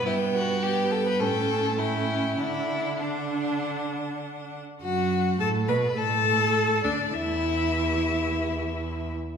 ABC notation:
X:1
M:4/4
L:1/16
Q:1/4=103
K:D
V:1 name="Violin"
g4 g4 g4 g4 | f4 f8- f2 z2 | f4 a2 b2 a6 d2 | e12- e2 z2 |]
V:2 name="Violin"
E2 F2 G2 A B A4 E4 | E4 D8 z4 | F4 A2 B2 A6 D2 | E12- E2 z2 |]
V:3 name="Viola"
B,4 B,4 C4 C4 | D4 D8- D2 z2 | F4 A2 B2 A6 D2 | E12- E2 z2 |]
V:4 name="Cello" clef=bass
G,,8 A,,8 | D,12- D,2 z2 | F,,4 A,,2 B,,2 A,,6 D,,2 | E,,12- E,,2 z2 |]